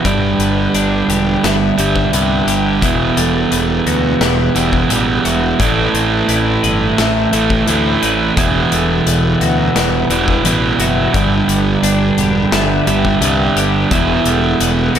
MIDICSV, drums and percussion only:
0, 0, Header, 1, 2, 480
1, 0, Start_track
1, 0, Key_signature, 1, "minor"
1, 0, Tempo, 693642
1, 32, Time_signature, 4, 2, 24, 8
1, 10373, End_track
2, 0, Start_track
2, 0, Title_t, "Drums"
2, 34, Note_on_c, 9, 36, 86
2, 36, Note_on_c, 9, 42, 69
2, 104, Note_off_c, 9, 36, 0
2, 105, Note_off_c, 9, 42, 0
2, 276, Note_on_c, 9, 42, 53
2, 345, Note_off_c, 9, 42, 0
2, 516, Note_on_c, 9, 42, 64
2, 585, Note_off_c, 9, 42, 0
2, 759, Note_on_c, 9, 42, 57
2, 828, Note_off_c, 9, 42, 0
2, 998, Note_on_c, 9, 38, 93
2, 998, Note_on_c, 9, 42, 76
2, 1067, Note_off_c, 9, 38, 0
2, 1067, Note_off_c, 9, 42, 0
2, 1236, Note_on_c, 9, 42, 55
2, 1305, Note_off_c, 9, 42, 0
2, 1353, Note_on_c, 9, 36, 70
2, 1423, Note_off_c, 9, 36, 0
2, 1476, Note_on_c, 9, 42, 82
2, 1545, Note_off_c, 9, 42, 0
2, 1715, Note_on_c, 9, 42, 60
2, 1784, Note_off_c, 9, 42, 0
2, 1954, Note_on_c, 9, 36, 84
2, 1955, Note_on_c, 9, 42, 68
2, 2023, Note_off_c, 9, 36, 0
2, 2024, Note_off_c, 9, 42, 0
2, 2196, Note_on_c, 9, 42, 62
2, 2265, Note_off_c, 9, 42, 0
2, 2434, Note_on_c, 9, 42, 65
2, 2504, Note_off_c, 9, 42, 0
2, 2676, Note_on_c, 9, 42, 49
2, 2745, Note_off_c, 9, 42, 0
2, 2914, Note_on_c, 9, 38, 90
2, 2914, Note_on_c, 9, 42, 68
2, 2983, Note_off_c, 9, 38, 0
2, 2983, Note_off_c, 9, 42, 0
2, 3153, Note_on_c, 9, 42, 57
2, 3223, Note_off_c, 9, 42, 0
2, 3272, Note_on_c, 9, 36, 65
2, 3341, Note_off_c, 9, 36, 0
2, 3392, Note_on_c, 9, 42, 72
2, 3462, Note_off_c, 9, 42, 0
2, 3635, Note_on_c, 9, 42, 58
2, 3704, Note_off_c, 9, 42, 0
2, 3873, Note_on_c, 9, 36, 95
2, 3875, Note_on_c, 9, 42, 70
2, 3942, Note_off_c, 9, 36, 0
2, 3944, Note_off_c, 9, 42, 0
2, 4116, Note_on_c, 9, 42, 53
2, 4185, Note_off_c, 9, 42, 0
2, 4351, Note_on_c, 9, 42, 61
2, 4420, Note_off_c, 9, 42, 0
2, 4594, Note_on_c, 9, 42, 52
2, 4663, Note_off_c, 9, 42, 0
2, 4833, Note_on_c, 9, 38, 94
2, 4833, Note_on_c, 9, 42, 68
2, 4902, Note_off_c, 9, 38, 0
2, 4902, Note_off_c, 9, 42, 0
2, 5072, Note_on_c, 9, 42, 56
2, 5141, Note_off_c, 9, 42, 0
2, 5192, Note_on_c, 9, 36, 70
2, 5261, Note_off_c, 9, 36, 0
2, 5311, Note_on_c, 9, 42, 80
2, 5381, Note_off_c, 9, 42, 0
2, 5554, Note_on_c, 9, 42, 57
2, 5624, Note_off_c, 9, 42, 0
2, 5793, Note_on_c, 9, 36, 99
2, 5794, Note_on_c, 9, 42, 80
2, 5862, Note_off_c, 9, 36, 0
2, 5863, Note_off_c, 9, 42, 0
2, 6034, Note_on_c, 9, 42, 58
2, 6103, Note_off_c, 9, 42, 0
2, 6275, Note_on_c, 9, 42, 67
2, 6344, Note_off_c, 9, 42, 0
2, 6513, Note_on_c, 9, 42, 50
2, 6582, Note_off_c, 9, 42, 0
2, 6753, Note_on_c, 9, 38, 86
2, 6753, Note_on_c, 9, 42, 75
2, 6822, Note_off_c, 9, 38, 0
2, 6822, Note_off_c, 9, 42, 0
2, 6993, Note_on_c, 9, 42, 48
2, 7062, Note_off_c, 9, 42, 0
2, 7113, Note_on_c, 9, 36, 62
2, 7182, Note_off_c, 9, 36, 0
2, 7231, Note_on_c, 9, 42, 83
2, 7300, Note_off_c, 9, 42, 0
2, 7471, Note_on_c, 9, 42, 59
2, 7540, Note_off_c, 9, 42, 0
2, 7711, Note_on_c, 9, 36, 99
2, 7711, Note_on_c, 9, 42, 66
2, 7780, Note_off_c, 9, 42, 0
2, 7781, Note_off_c, 9, 36, 0
2, 7951, Note_on_c, 9, 42, 54
2, 8020, Note_off_c, 9, 42, 0
2, 8190, Note_on_c, 9, 42, 69
2, 8259, Note_off_c, 9, 42, 0
2, 8428, Note_on_c, 9, 42, 51
2, 8497, Note_off_c, 9, 42, 0
2, 8666, Note_on_c, 9, 38, 97
2, 8666, Note_on_c, 9, 42, 76
2, 8736, Note_off_c, 9, 38, 0
2, 8736, Note_off_c, 9, 42, 0
2, 8908, Note_on_c, 9, 42, 49
2, 8977, Note_off_c, 9, 42, 0
2, 9029, Note_on_c, 9, 36, 67
2, 9098, Note_off_c, 9, 36, 0
2, 9147, Note_on_c, 9, 42, 84
2, 9216, Note_off_c, 9, 42, 0
2, 9388, Note_on_c, 9, 42, 70
2, 9458, Note_off_c, 9, 42, 0
2, 9627, Note_on_c, 9, 36, 96
2, 9627, Note_on_c, 9, 42, 77
2, 9696, Note_off_c, 9, 42, 0
2, 9697, Note_off_c, 9, 36, 0
2, 9865, Note_on_c, 9, 42, 56
2, 9934, Note_off_c, 9, 42, 0
2, 10107, Note_on_c, 9, 42, 79
2, 10176, Note_off_c, 9, 42, 0
2, 10347, Note_on_c, 9, 42, 54
2, 10373, Note_off_c, 9, 42, 0
2, 10373, End_track
0, 0, End_of_file